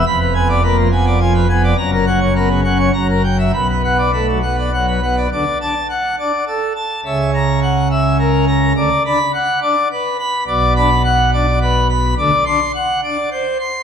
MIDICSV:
0, 0, Header, 1, 2, 480
1, 0, Start_track
1, 0, Key_signature, 2, "minor"
1, 0, Tempo, 571973
1, 61, Time_signature, 3, 2, 24, 8
1, 1981, Tempo, 586510
1, 5821, Tempo, 570342
1, 11525, End_track
2, 0, Start_track
2, 0, Title_t, "Pipe organ"
2, 0, Program_c, 0, 19
2, 51, Note_on_c, 0, 83, 94
2, 163, Note_off_c, 0, 83, 0
2, 169, Note_on_c, 0, 71, 70
2, 282, Note_off_c, 0, 71, 0
2, 290, Note_on_c, 0, 80, 66
2, 291, Note_on_c, 0, 59, 65
2, 402, Note_off_c, 0, 80, 0
2, 413, Note_on_c, 0, 74, 65
2, 510, Note_off_c, 0, 59, 0
2, 524, Note_off_c, 0, 74, 0
2, 529, Note_on_c, 0, 71, 75
2, 531, Note_on_c, 0, 58, 60
2, 642, Note_off_c, 0, 71, 0
2, 651, Note_on_c, 0, 53, 64
2, 739, Note_off_c, 0, 58, 0
2, 762, Note_off_c, 0, 53, 0
2, 771, Note_on_c, 0, 80, 73
2, 772, Note_on_c, 0, 59, 64
2, 882, Note_off_c, 0, 80, 0
2, 891, Note_on_c, 0, 74, 60
2, 988, Note_off_c, 0, 59, 0
2, 1002, Note_off_c, 0, 74, 0
2, 1007, Note_on_c, 0, 80, 75
2, 1009, Note_on_c, 0, 53, 76
2, 1118, Note_off_c, 0, 80, 0
2, 1127, Note_on_c, 0, 71, 62
2, 1226, Note_off_c, 0, 53, 0
2, 1239, Note_off_c, 0, 71, 0
2, 1251, Note_on_c, 0, 59, 65
2, 1253, Note_on_c, 0, 80, 72
2, 1362, Note_off_c, 0, 80, 0
2, 1377, Note_on_c, 0, 74, 67
2, 1458, Note_off_c, 0, 59, 0
2, 1479, Note_off_c, 0, 74, 0
2, 1487, Note_on_c, 0, 82, 96
2, 1489, Note_on_c, 0, 30, 77
2, 1490, Note_on_c, 0, 42, 84
2, 1598, Note_off_c, 0, 82, 0
2, 1614, Note_on_c, 0, 70, 59
2, 1723, Note_off_c, 0, 70, 0
2, 1730, Note_on_c, 0, 61, 62
2, 1731, Note_on_c, 0, 78, 68
2, 1842, Note_off_c, 0, 78, 0
2, 1853, Note_on_c, 0, 73, 58
2, 1950, Note_off_c, 0, 61, 0
2, 1964, Note_off_c, 0, 73, 0
2, 1976, Note_on_c, 0, 59, 54
2, 1977, Note_on_c, 0, 70, 72
2, 2085, Note_off_c, 0, 70, 0
2, 2090, Note_on_c, 0, 49, 66
2, 2181, Note_off_c, 0, 59, 0
2, 2201, Note_off_c, 0, 49, 0
2, 2211, Note_on_c, 0, 61, 57
2, 2212, Note_on_c, 0, 78, 65
2, 2322, Note_off_c, 0, 78, 0
2, 2334, Note_on_c, 0, 73, 58
2, 2418, Note_off_c, 0, 61, 0
2, 2426, Note_off_c, 0, 30, 0
2, 2426, Note_off_c, 0, 42, 0
2, 2438, Note_off_c, 0, 73, 0
2, 2451, Note_on_c, 0, 42, 74
2, 2452, Note_on_c, 0, 30, 78
2, 2453, Note_on_c, 0, 82, 89
2, 2563, Note_off_c, 0, 82, 0
2, 2577, Note_on_c, 0, 70, 58
2, 2686, Note_off_c, 0, 70, 0
2, 2699, Note_on_c, 0, 79, 66
2, 2808, Note_off_c, 0, 79, 0
2, 2821, Note_on_c, 0, 76, 65
2, 2925, Note_off_c, 0, 76, 0
2, 2926, Note_off_c, 0, 30, 0
2, 2926, Note_off_c, 0, 42, 0
2, 2940, Note_on_c, 0, 47, 62
2, 2942, Note_on_c, 0, 83, 82
2, 2943, Note_on_c, 0, 35, 63
2, 3052, Note_off_c, 0, 83, 0
2, 3068, Note_on_c, 0, 71, 54
2, 3176, Note_off_c, 0, 71, 0
2, 3190, Note_on_c, 0, 59, 58
2, 3191, Note_on_c, 0, 78, 63
2, 3298, Note_off_c, 0, 78, 0
2, 3310, Note_on_c, 0, 74, 52
2, 3406, Note_off_c, 0, 59, 0
2, 3418, Note_off_c, 0, 74, 0
2, 3428, Note_on_c, 0, 57, 49
2, 3429, Note_on_c, 0, 71, 56
2, 3539, Note_off_c, 0, 71, 0
2, 3553, Note_on_c, 0, 54, 54
2, 3637, Note_off_c, 0, 57, 0
2, 3662, Note_off_c, 0, 54, 0
2, 3674, Note_on_c, 0, 59, 51
2, 3674, Note_on_c, 0, 78, 55
2, 3783, Note_off_c, 0, 78, 0
2, 3802, Note_on_c, 0, 74, 52
2, 3892, Note_off_c, 0, 59, 0
2, 3908, Note_off_c, 0, 74, 0
2, 3923, Note_on_c, 0, 54, 56
2, 3923, Note_on_c, 0, 78, 60
2, 4029, Note_off_c, 0, 78, 0
2, 4040, Note_on_c, 0, 71, 54
2, 4138, Note_off_c, 0, 54, 0
2, 4148, Note_off_c, 0, 71, 0
2, 4161, Note_on_c, 0, 59, 49
2, 4162, Note_on_c, 0, 78, 55
2, 4269, Note_off_c, 0, 78, 0
2, 4282, Note_on_c, 0, 74, 56
2, 4365, Note_off_c, 0, 47, 0
2, 4365, Note_off_c, 0, 59, 0
2, 4367, Note_off_c, 0, 35, 0
2, 4383, Note_off_c, 0, 74, 0
2, 4407, Note_on_c, 0, 38, 68
2, 4408, Note_on_c, 0, 50, 61
2, 4408, Note_on_c, 0, 74, 58
2, 4505, Note_off_c, 0, 38, 0
2, 4505, Note_off_c, 0, 50, 0
2, 4617, Note_off_c, 0, 74, 0
2, 4642, Note_on_c, 0, 81, 83
2, 4644, Note_on_c, 0, 62, 52
2, 4747, Note_off_c, 0, 62, 0
2, 4852, Note_off_c, 0, 81, 0
2, 4877, Note_on_c, 0, 78, 63
2, 5087, Note_off_c, 0, 78, 0
2, 5114, Note_on_c, 0, 62, 61
2, 5116, Note_on_c, 0, 74, 57
2, 5218, Note_off_c, 0, 62, 0
2, 5324, Note_off_c, 0, 74, 0
2, 5346, Note_on_c, 0, 69, 64
2, 5557, Note_off_c, 0, 69, 0
2, 5580, Note_on_c, 0, 81, 60
2, 5782, Note_off_c, 0, 81, 0
2, 5820, Note_on_c, 0, 76, 64
2, 5821, Note_on_c, 0, 37, 68
2, 5822, Note_on_c, 0, 49, 69
2, 6035, Note_off_c, 0, 76, 0
2, 6066, Note_on_c, 0, 82, 78
2, 6279, Note_off_c, 0, 82, 0
2, 6304, Note_on_c, 0, 78, 67
2, 6519, Note_off_c, 0, 78, 0
2, 6543, Note_on_c, 0, 76, 60
2, 6759, Note_off_c, 0, 76, 0
2, 6781, Note_on_c, 0, 70, 74
2, 6998, Note_off_c, 0, 70, 0
2, 7020, Note_on_c, 0, 82, 74
2, 7228, Note_off_c, 0, 82, 0
2, 7236, Note_off_c, 0, 37, 0
2, 7237, Note_off_c, 0, 49, 0
2, 7264, Note_on_c, 0, 38, 71
2, 7266, Note_on_c, 0, 74, 65
2, 7267, Note_on_c, 0, 50, 68
2, 7369, Note_off_c, 0, 38, 0
2, 7371, Note_off_c, 0, 50, 0
2, 7483, Note_off_c, 0, 74, 0
2, 7507, Note_on_c, 0, 62, 55
2, 7512, Note_on_c, 0, 83, 89
2, 7616, Note_off_c, 0, 62, 0
2, 7726, Note_off_c, 0, 83, 0
2, 7744, Note_on_c, 0, 78, 71
2, 7962, Note_off_c, 0, 78, 0
2, 7982, Note_on_c, 0, 62, 61
2, 7985, Note_on_c, 0, 74, 70
2, 8094, Note_off_c, 0, 62, 0
2, 8202, Note_off_c, 0, 74, 0
2, 8231, Note_on_c, 0, 71, 66
2, 8445, Note_off_c, 0, 71, 0
2, 8461, Note_on_c, 0, 83, 70
2, 8669, Note_off_c, 0, 83, 0
2, 8698, Note_on_c, 0, 47, 82
2, 8699, Note_on_c, 0, 35, 74
2, 8701, Note_on_c, 0, 74, 69
2, 8918, Note_off_c, 0, 74, 0
2, 8943, Note_on_c, 0, 62, 60
2, 8945, Note_on_c, 0, 83, 96
2, 9053, Note_off_c, 0, 62, 0
2, 9161, Note_off_c, 0, 83, 0
2, 9182, Note_on_c, 0, 78, 81
2, 9399, Note_off_c, 0, 78, 0
2, 9420, Note_on_c, 0, 62, 65
2, 9423, Note_on_c, 0, 74, 72
2, 9531, Note_off_c, 0, 62, 0
2, 9640, Note_off_c, 0, 74, 0
2, 9663, Note_on_c, 0, 71, 80
2, 9879, Note_off_c, 0, 71, 0
2, 9898, Note_on_c, 0, 83, 71
2, 10105, Note_off_c, 0, 83, 0
2, 10107, Note_off_c, 0, 35, 0
2, 10107, Note_off_c, 0, 47, 0
2, 10139, Note_on_c, 0, 50, 85
2, 10140, Note_on_c, 0, 38, 84
2, 10141, Note_on_c, 0, 74, 70
2, 10244, Note_off_c, 0, 38, 0
2, 10244, Note_off_c, 0, 50, 0
2, 10357, Note_off_c, 0, 74, 0
2, 10371, Note_on_c, 0, 84, 94
2, 10374, Note_on_c, 0, 62, 67
2, 10486, Note_off_c, 0, 62, 0
2, 10591, Note_off_c, 0, 84, 0
2, 10614, Note_on_c, 0, 78, 75
2, 10832, Note_off_c, 0, 78, 0
2, 10859, Note_on_c, 0, 74, 72
2, 10861, Note_on_c, 0, 62, 64
2, 10969, Note_off_c, 0, 62, 0
2, 11074, Note_off_c, 0, 74, 0
2, 11091, Note_on_c, 0, 72, 76
2, 11310, Note_off_c, 0, 72, 0
2, 11325, Note_on_c, 0, 84, 69
2, 11525, Note_off_c, 0, 84, 0
2, 11525, End_track
0, 0, End_of_file